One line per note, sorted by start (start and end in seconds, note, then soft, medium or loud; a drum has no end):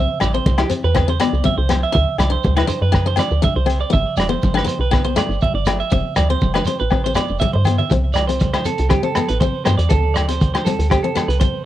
0.00 0.10 C4 medium
0.00 0.19 E5 medium
0.20 0.40 A1 medium
0.20 0.33 D5 medium
0.20 cross-stick medium
0.20 closed hi-hat soft
0.20 muted conga soft
0.20 high conga medium
0.20 low agogo medium
0.20 shekere loud
0.34 0.48 C4 medium
0.34 0.58 C5 medium
0.34 shekere soft
0.46 0.65 C2 medium
0.46 kick medium
0.46 high conga medium
0.46 shekere medium
0.58 0.65 E4 medium
0.58 0.69 G4 medium
0.58 cross-stick medium
0.58 low agogo medium
0.70 0.84 C4 medium
0.70 closed hi-hat soft
0.70 shekere medium
0.84 1.21 E2 medium
0.84 1.08 B4 medium
0.84 shekere soft
0.95 1.02 C4 medium
0.95 kick medium
0.95 cross-stick medium
0.95 muted conga soft
0.95 low agogo medium
0.95 shekere medium
1.08 1.15 C4 medium
1.08 1.20 C5 medium
1.20 1.34 B3 medium
1.20 1.44 D5 medium
1.20 cross-stick medium
1.20 closed hi-hat soft
1.20 low agogo medium
1.20 shekere medium
1.33 1.42 C2 medium
1.33 shekere soft
1.44 1.58 C4 medium
1.44 1.57 E5 medium
1.44 kick medium
1.44 high conga medium
1.44 shekere medium
1.58 1.86 C2 medium
1.58 1.82 C5 medium
1.69 1.83 B3 medium
1.69 cross-stick medium
1.69 closed hi-hat medium
1.69 muted conga soft
1.69 low agogo medium
1.69 shekere medium
1.83 1.93 E5 medium
1.83 shekere soft
1.93 2.05 D2 loud
1.93 2.07 D4 medium
1.93 2.18 E5 medium
1.93 kick medium
1.93 muted conga soft
1.93 shekere medium
2.19 2.38 C2 medium
2.19 2.31 D5 medium
2.19 cross-stick medium
2.19 closed hi-hat soft
2.19 muted conga soft
2.19 high conga medium
2.19 low agogo medium
2.19 shekere medium
2.30 2.45 D4 medium
2.30 2.56 C5 medium
2.44 2.63 D2 medium
2.44 kick medium
2.44 high conga medium
2.44 shekere medium
2.57 2.64 E4 medium
2.57 2.68 B4 medium
2.57 cross-stick medium
2.57 low agogo medium
2.67 2.82 D4 medium
2.67 2.81 C5 medium
2.67 closed hi-hat soft
2.67 shekere medium
2.82 3.19 F#2 medium
2.82 3.06 B4 medium
2.92 3.00 D4 medium
2.92 kick medium
2.92 cross-stick medium
2.92 low agogo medium
2.92 shekere medium
3.06 3.13 D4 medium
3.06 3.18 C5 medium
3.16 3.31 C4 medium
3.16 3.43 D5 medium
3.16 cross-stick medium
3.16 closed hi-hat soft
3.16 low agogo medium
3.16 shekere medium
3.31 3.40 D2 medium
3.31 shekere soft
3.42 3.57 D4 medium
3.42 3.56 E5 medium
3.42 kick medium
3.42 high conga medium
3.42 shekere medium
3.56 3.84 C2 medium
3.56 3.80 C5 medium
3.66 3.81 C4 medium
3.66 closed hi-hat soft
3.66 muted conga soft
3.66 low agogo medium
3.80 3.92 D5 medium
3.80 shekere soft
3.90 4.05 B3 medium
3.90 4.17 E5 medium
3.90 kick medium
3.90 muted conga soft
3.90 shekere medium
3.94 4.04 G1 loud
4.17 4.36 E1 medium
4.17 4.29 D5 medium
4.17 cross-stick medium
4.17 closed hi-hat soft
4.17 muted conga soft
4.17 high conga medium
4.17 low agogo medium
4.17 shekere loud
4.29 4.44 B3 medium
4.29 4.54 C5 medium
4.29 shekere soft
4.42 4.62 G1 medium
4.42 kick medium
4.42 high conga medium
4.42 shekere medium
4.54 4.61 D4 medium
4.54 4.67 B4 medium
4.54 cross-stick medium
4.54 low agogo medium
4.64 4.79 B3 medium
4.64 4.80 C5 medium
4.64 shekere loud
4.69 closed hi-hat soft
4.79 5.17 B1 medium
4.79 5.04 B4 medium
4.91 4.99 B3 medium
4.91 kick medium
4.91 cross-stick medium
4.91 muted conga soft
4.91 low agogo medium
4.91 shekere medium
5.04 5.11 B3 medium
5.04 5.16 C5 medium
5.16 5.30 A3 medium
5.16 5.41 D5 medium
5.16 cross-stick medium
5.16 closed hi-hat medium
5.16 low agogo medium
5.16 shekere medium
5.29 5.39 G1 medium
5.29 shekere soft
5.41 5.54 E5 medium
5.41 kick medium
5.41 high conga medium
5.41 shekere medium
5.54 5.82 G1 medium
5.54 5.79 D5 medium
5.65 5.81 A3 medium
5.65 cross-stick medium
5.65 closed hi-hat medium
5.65 muted conga soft
5.65 low agogo medium
5.65 shekere loud
5.80 5.91 E5 medium
5.80 shekere soft
5.90 6.02 F1 loud
5.90 6.06 C4 medium
5.90 6.16 E5 medium
5.90 kick medium
5.90 muted conga soft
5.90 shekere medium
6.16 6.36 D2 medium
6.16 6.29 D5 medium
6.16 cross-stick medium
6.16 closed hi-hat medium
6.16 muted conga soft
6.16 high conga medium
6.16 low agogo medium
6.16 shekere loud
6.29 6.44 C4 medium
6.29 6.54 C5 medium
6.29 shekere soft
6.41 6.60 F1 medium
6.41 kick medium
6.41 high conga medium
6.41 shekere medium
6.54 6.62 D4 medium
6.54 6.66 B4 medium
6.54 cross-stick medium
6.54 low agogo medium
6.65 6.81 C4 medium
6.65 6.79 C5 medium
6.65 closed hi-hat soft
6.65 shekere medium
6.79 7.18 A1 medium
6.79 7.03 B4 medium
6.79 shekere soft
6.90 6.99 C4 medium
6.90 kick medium
6.90 cross-stick medium
6.90 low agogo medium
6.90 shekere medium
7.04 7.12 C4 medium
7.04 7.15 C5 medium
7.14 7.31 B3 medium
7.14 7.39 D5 medium
7.14 cross-stick medium
7.14 closed hi-hat soft
7.14 low agogo medium
7.14 shekere medium
7.28 7.39 F1 medium
7.28 shekere soft
7.39 7.53 E5 medium
7.39 muted steel-string acoustic guitar stroke medium
7.39 kick medium
7.39 high conga medium
7.39 shekere medium
7.53 7.83 G2 medium
7.53 7.78 C5 medium
7.53 high conga medium
7.65 7.81 B3 medium
7.65 closed hi-hat soft
7.65 low conga medium
7.65 low agogo medium
7.65 shekere medium
7.78 7.90 E5 medium
7.78 low conga medium
7.78 shekere soft
7.90 8.57 C2 loud
7.90 8.06 C4 medium
7.90 muted clean electric guitar stroke medium
7.90 kick medium
7.90 closed hi-hat soft
7.90 shekere medium
8.14 8.27 D5 medium
8.14 cross-stick medium
8.14 closed hi-hat soft
8.14 low agogo medium
8.14 shekere loud
8.27 8.43 C4 medium
8.27 8.52 C5 medium
8.27 closed hi-hat medium
8.27 shekere soft
8.39 kick medium
8.39 closed hi-hat soft
8.39 muted conga soft
8.39 high conga medium
8.39 shekere medium
8.53 8.61 E4 medium
8.53 8.65 C5 medium
8.53 cross-stick medium
8.53 low agogo medium
8.65 8.80 C4 medium
8.65 8.89 A4 medium
8.65 closed hi-hat soft
8.65 shekere medium
8.78 8.98 C2 medium
8.78 closed hi-hat soft
8.78 shekere soft
8.90 8.98 C4 medium
8.90 9.03 G4 medium
8.90 kick medium
8.90 cross-stick medium
8.90 closed hi-hat soft
8.90 muted conga soft
8.90 high conga medium
8.90 low agogo medium
8.90 shekere medium
9.03 9.10 C4 medium
9.03 9.28 A4 medium
9.15 9.31 B3 medium
9.15 cross-stick medium
9.15 closed hi-hat soft
9.15 muted conga soft
9.15 low agogo medium
9.15 shekere medium
9.29 9.48 A1 medium
9.29 9.40 B4 medium
9.29 closed hi-hat medium
9.40 9.56 C4 medium
9.40 9.64 C5 medium
9.40 kick medium
9.40 closed hi-hat soft
9.40 shekere medium
9.65 9.76 G2 medium
9.65 9.81 B3 medium
9.65 9.77 C5 medium
9.65 cross-stick medium
9.65 closed hi-hat soft
9.65 high conga medium
9.65 low agogo medium
9.65 shekere medium
9.78 9.88 E2 medium
9.78 9.90 D5 medium
9.78 closed hi-hat medium
9.78 shekere soft
9.89 10.57 D2 medium
9.89 10.05 C4 medium
9.89 10.14 A4 medium
9.89 kick medium
9.89 closed hi-hat soft
9.89 muted conga soft
9.89 shekere medium
10.14 10.28 D5 medium
10.14 cross-stick medium
10.14 closed hi-hat soft
10.14 low agogo medium
10.14 shekere medium
10.29 10.43 C4 medium
10.29 10.53 C5 medium
10.29 closed hi-hat medium
10.29 shekere soft
10.40 kick medium
10.40 closed hi-hat soft
10.40 muted conga soft
10.40 low conga medium
10.40 shekere medium
10.54 10.61 D4 medium
10.54 10.65 C5 medium
10.54 cross-stick medium
10.54 low agogo medium
10.65 10.81 C4 medium
10.65 10.89 A4 medium
10.65 closed hi-hat soft
10.65 high conga medium
10.65 shekere loud
10.79 10.98 D2 medium
10.79 closed hi-hat soft
10.79 shekere soft
10.90 10.99 C4 medium
10.90 11.02 G4 medium
10.90 kick medium
10.90 cross-stick medium
10.90 closed hi-hat soft
10.90 low agogo medium
10.90 shekere medium
11.03 11.11 C4 medium
11.03 11.27 A4 medium
11.15 11.30 B3 medium
11.15 cross-stick medium
11.15 closed hi-hat soft
11.15 muted conga soft
11.15 low agogo medium
11.15 shekere medium
11.28 11.47 C2 medium
11.28 11.39 B4 medium
11.28 closed hi-hat soft
11.40 11.55 C4 medium
11.40 11.63 C5 medium
11.40 kick medium
11.40 closed hi-hat soft
11.40 high conga medium
11.40 shekere medium